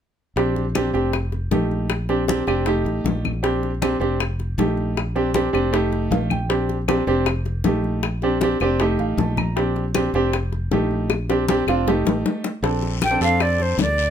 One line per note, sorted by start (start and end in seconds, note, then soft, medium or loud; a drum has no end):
0.36 0.90 A#1 medium
0.36 0.64 C4 medium
0.36 0.64 D4 medium
0.36 0.64 G4 medium
0.36 high bongo medium
0.36 high conga soft
0.56 high bongo soft
0.56 high conga soft
0.75 0.89 C4 medium
0.75 0.89 D4 medium
0.75 0.89 G4 medium
0.75 high bongo medium
0.75 high conga medium
0.75 claves medium
0.93 1.47 F1 medium
0.93 1.13 C4 medium
0.93 1.13 D4 medium
0.93 1.13 G4 medium
0.93 high bongo soft
0.93 high conga soft
1.13 high bongo medium
1.13 high conga soft
1.13 claves medium
1.32 high bongo soft
1.32 high conga soft
1.51 2.41 A#1 medium
1.51 1.90 A3 medium
1.51 1.90 D#4 medium
1.51 1.90 G4 medium
1.51 high bongo soft
1.51 low bongo medium
1.51 high conga medium
1.71 high conga soft
1.90 high bongo medium
1.90 high conga soft
1.90 claves medium
2.09 2.23 C4 medium
2.09 2.23 D4 medium
2.09 2.23 G4 medium
2.09 high bongo soft
2.09 high conga soft
2.28 2.42 C4 medium
2.28 2.42 D4 medium
2.28 2.42 G4 medium
2.28 high bongo soft
2.28 high conga medium
2.47 2.83 F1 medium
2.47 2.67 C4 medium
2.47 2.67 D4 medium
2.47 2.66 G4 loud
2.47 high bongo soft
2.47 high conga soft
2.47 claves medium
2.66 3.28 A3 medium
2.66 3.28 D#4 medium
2.66 3.28 G4 loud
2.66 high bongo medium
2.66 high conga soft
2.85 3.03 A1 medium
2.85 high bongo soft
2.85 high conga soft
3.04 3.95 A#1 medium
3.04 high bongo soft
3.04 low bongo medium
3.04 high conga medium
3.25 high conga medium
3.25 claves medium
3.43 3.70 C4 medium
3.43 3.70 D4 medium
3.43 3.70 G4 medium
3.43 high bongo medium
3.43 high conga soft
3.63 high bongo soft
3.63 high conga soft
3.82 3.95 C4 medium
3.82 3.95 D4 medium
3.82 3.95 G4 medium
3.82 high bongo soft
3.82 high conga medium
3.82 claves medium
4.00 4.54 F1 medium
4.00 4.20 C4 medium
4.00 4.20 D4 medium
4.00 4.20 G4 medium
4.00 high bongo soft
4.00 high conga soft
4.20 high bongo medium
4.20 high conga soft
4.20 claves medium
4.39 high bongo soft
4.39 high conga soft
4.58 5.48 A#1 medium
4.58 4.97 A3 medium
4.58 4.97 D#4 medium
4.58 4.97 G4 medium
4.58 high bongo soft
4.58 low bongo medium
4.58 high conga medium
4.77 high conga soft
4.97 high bongo medium
4.97 high conga soft
4.97 claves soft
5.16 5.29 C4 medium
5.16 5.29 D4 medium
5.16 5.29 G4 medium
5.16 high bongo soft
5.16 high conga soft
5.34 5.48 C4 medium
5.34 5.48 D4 medium
5.34 5.48 G4 medium
5.34 high bongo medium
5.34 high conga medium
5.53 6.07 F1 medium
5.53 5.73 C4 medium
5.53 5.73 D4 medium
5.53 5.71 G4 medium
5.53 high bongo soft
5.53 high conga soft
5.53 claves medium
5.73 6.34 A3 medium
5.73 6.34 D#4 medium
5.73 6.34 G4 medium
5.73 high bongo medium
5.73 high conga soft
5.92 high bongo soft
5.92 high conga soft
6.11 7.01 A#1 medium
6.11 6.29 F5 medium
6.11 high bongo soft
6.11 low bongo medium
6.11 high conga medium
6.30 6.49 G5 medium
6.30 high conga medium
6.30 claves medium
6.49 6.76 C4 medium
6.49 6.77 D4 medium
6.49 6.77 G4 medium
6.49 high bongo medium
6.49 high conga soft
6.69 high bongo soft
6.69 high conga soft
6.88 7.02 C4 medium
6.88 7.02 D4 medium
6.88 7.02 G4 medium
6.88 high bongo soft
6.88 high conga medium
6.88 claves medium
7.07 7.61 F1 medium
7.07 7.27 C4 medium
7.07 7.27 D4 medium
7.07 7.27 G4 medium
7.07 high bongo soft
7.07 high conga soft
7.26 high bongo medium
7.26 high conga soft
7.26 claves medium
7.45 high bongo soft
7.45 high conga soft
7.64 8.55 A#1 medium
7.64 8.03 A3 medium
7.64 8.03 D#4 medium
7.64 8.04 G4 medium
7.64 high bongo soft
7.64 low bongo medium
7.64 high conga medium
7.84 high conga soft
8.03 high bongo medium
8.03 high conga soft
8.03 claves medium
8.22 8.36 C4 medium
8.22 8.36 D4 medium
8.22 8.36 G4 medium
8.22 high bongo soft
8.22 high conga soft
8.41 8.55 C4 medium
8.41 8.56 D4 medium
8.41 8.56 G4 loud
8.41 high bongo medium
8.41 high conga medium
8.60 8.96 F1 medium
8.60 8.80 C4 medium
8.60 8.81 D4 medium
8.60 8.79 G4 loud
8.60 8.79 D5 medium
8.60 high bongo soft
8.60 high conga soft
8.60 claves medium
8.80 9.42 A3 medium
8.80 9.42 D#4 medium
8.80 9.42 G4 medium
8.80 8.98 D#5 medium
8.80 high bongo medium
8.80 high conga soft
8.99 9.17 A1 medium
8.99 9.17 F5 medium
8.99 high bongo soft
8.99 high conga soft
9.17 10.08 A#1 medium
9.17 9.36 A5 medium
9.17 high bongo soft
9.17 low bongo medium
9.17 high conga medium
9.37 9.55 A#5 medium
9.37 high conga medium
9.37 claves medium
9.56 9.83 C4 medium
9.56 9.83 D4 medium
9.56 9.83 G4 medium
9.56 high bongo medium
9.56 high conga soft
9.76 high bongo soft
9.76 high conga soft
9.95 10.08 C4 medium
9.95 10.08 D4 medium
9.95 10.09 G4 medium
9.95 high bongo medium
9.95 high conga medium
9.95 claves medium
10.13 10.67 F1 medium
10.13 10.34 C4 medium
10.13 10.34 D4 medium
10.13 10.34 G4 loud
10.13 high bongo soft
10.13 high conga soft
10.33 high bongo medium
10.33 high conga soft
10.33 claves medium
10.52 high bongo soft
10.52 high conga soft
10.71 11.61 A#1 medium
10.71 11.10 A3 medium
10.71 11.10 D#4 medium
10.71 11.10 G4 medium
10.71 high bongo soft
10.71 low bongo medium
10.71 high conga medium
10.91 high conga soft
11.10 high bongo medium
11.10 high conga soft
11.10 claves medium
11.29 11.43 C4 medium
11.29 11.43 D4 medium
11.29 11.43 G4 medium
11.29 high bongo medium
11.29 high conga soft
11.48 11.62 C4 medium
11.48 11.62 D4 medium
11.48 11.62 G4 loud
11.48 high bongo medium
11.48 high conga medium
11.67 12.03 F1 medium
11.67 11.87 C4 medium
11.67 11.87 D4 medium
11.67 11.87 F4 loud
11.67 high bongo medium
11.67 high conga soft
11.67 claves medium
11.87 12.48 A3 medium
11.87 12.49 D#4 medium
11.87 12.49 G4 medium
11.87 low bongo medium
11.87 high conga soft
12.05 12.23 A1 medium
12.05 low bongo loud
12.05 high conga soft
12.26 low bongo medium
12.44 low bongo medium
12.62 13.16 A#1 medium
12.62 12.97 C4 medium
12.62 12.97 D4 medium
12.62 12.97 A4 medium
12.62 high bongo medium
12.62 high conga soft
12.62 long guiro medium
12.83 high bongo soft
12.83 high conga soft
13.02 13.20 G5 medium
13.02 high bongo soft
13.02 high conga loud
13.02 short guiro medium
13.02 claves medium
13.11 13.18 C4 medium
13.11 13.18 D4 medium
13.11 13.18 A4 medium
13.20 13.74 F2 medium
13.20 13.75 C4 medium
13.20 13.75 D4 medium
13.20 13.75 A4 medium
13.20 13.43 F5 medium
13.20 high bongo soft
13.20 high conga soft
13.20 short guiro medium
13.40 13.64 D5 medium
13.40 high bongo medium
13.40 high conga soft
13.40 long guiro medium
13.40 claves medium
13.59 13.80 C5 medium
13.59 high bongo soft
13.59 high conga soft
13.78 14.10 D2 loud
13.78 high bongo soft
13.78 low bongo medium
13.78 high conga medium
13.78 short guiro medium
13.82 14.10 D5 medium
13.98 high conga soft
13.98 short guiro medium